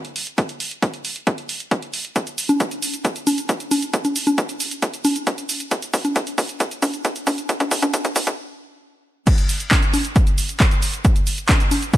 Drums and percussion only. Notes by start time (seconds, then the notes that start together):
0.05 closed hi-hat
0.16 open hi-hat
0.27 closed hi-hat
0.38 kick, closed hi-hat
0.49 closed hi-hat
0.60 open hi-hat
0.71 closed hi-hat
0.82 kick, closed hi-hat
0.94 closed hi-hat
1.05 open hi-hat
1.16 closed hi-hat
1.27 kick, closed hi-hat
1.38 closed hi-hat
1.49 open hi-hat
1.60 closed hi-hat
1.71 kick, closed hi-hat
1.82 closed hi-hat
1.94 open hi-hat
2.05 closed hi-hat
2.16 kick, closed hi-hat, shaker
2.27 closed hi-hat, shaker
2.38 open hi-hat, shaker
2.49 closed hi-hat, high conga, shaker
2.60 kick, closed hi-hat, shaker
2.71 closed hi-hat, shaker
2.82 open hi-hat, shaker
2.94 closed hi-hat, shaker
3.05 kick, closed hi-hat, shaker
3.16 closed hi-hat, shaker
3.27 open hi-hat, high conga, shaker
3.38 closed hi-hat, shaker
3.49 kick, closed hi-hat, shaker
3.60 closed hi-hat, shaker
3.71 open hi-hat, high conga, shaker
3.82 closed hi-hat, shaker
3.94 kick, closed hi-hat, shaker
4.05 closed hi-hat, high conga, shaker
4.16 open hi-hat, shaker
4.27 closed hi-hat, high conga, shaker
4.38 kick, closed hi-hat, shaker
4.49 closed hi-hat, shaker
4.60 open hi-hat, shaker
4.71 closed hi-hat, shaker
4.82 kick, closed hi-hat, shaker
4.94 closed hi-hat, shaker
5.05 open hi-hat, high conga, shaker
5.16 closed hi-hat, shaker
5.27 kick, closed hi-hat, shaker
5.38 closed hi-hat, shaker
5.49 open hi-hat, shaker
5.60 closed hi-hat, shaker
5.71 kick, closed hi-hat, shaker
5.82 closed hi-hat, shaker
5.94 kick, open hi-hat, shaker
6.05 closed hi-hat, high conga, shaker
6.16 kick, closed hi-hat, shaker
6.27 closed hi-hat, shaker
6.38 kick, open hi-hat, shaker
6.49 closed hi-hat, shaker
6.60 kick, closed hi-hat, shaker
6.71 closed hi-hat, shaker
6.82 kick, open hi-hat, high conga, shaker
6.94 closed hi-hat, shaker
7.05 kick, closed hi-hat, shaker
7.16 closed hi-hat, shaker
7.27 kick, open hi-hat, high conga, shaker
7.38 closed hi-hat, shaker
7.49 kick, closed hi-hat, shaker
7.60 kick, closed hi-hat, high conga, shaker
7.71 kick, open hi-hat, shaker
7.82 kick, closed hi-hat, high conga, shaker
7.94 kick, closed hi-hat, shaker
8.05 kick, closed hi-hat, shaker
8.16 kick, open hi-hat, shaker
8.27 kick, closed hi-hat, shaker
9.27 kick, closed hi-hat, crash, shaker
9.38 closed hi-hat, shaker
9.49 open hi-hat, shaker
9.60 closed hi-hat, shaker
9.71 kick, clap, closed hi-hat, high conga, shaker
9.82 closed hi-hat, shaker
9.94 open hi-hat, high conga, shaker
10.05 closed hi-hat, shaker
10.16 kick, closed hi-hat, shaker
10.27 closed hi-hat, shaker
10.38 open hi-hat, shaker
10.49 closed hi-hat, shaker
10.60 kick, clap, closed hi-hat, shaker
10.71 closed hi-hat, shaker
10.82 open hi-hat, shaker
10.94 closed hi-hat, shaker
11.05 kick, closed hi-hat, shaker
11.16 closed hi-hat, shaker
11.27 open hi-hat, shaker
11.38 closed hi-hat, shaker
11.49 kick, clap, closed hi-hat, high conga, shaker
11.60 closed hi-hat, shaker
11.71 open hi-hat, high conga, shaker
11.82 closed hi-hat, shaker
11.94 kick, closed hi-hat, shaker